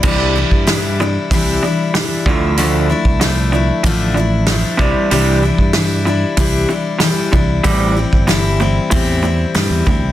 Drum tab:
CC |x---------------|----------------|----------------|----------------|
HH |----o---o---o---|o---o---o---o---|o---o---o---o---|o---o---o---o---|
SD |----o-------o---|----o-------o---|----o-------o---|----o-------o---|
BD |o--o----o-----o-|---o----o-----o-|---o----o-----o-|o--o----o-----o-|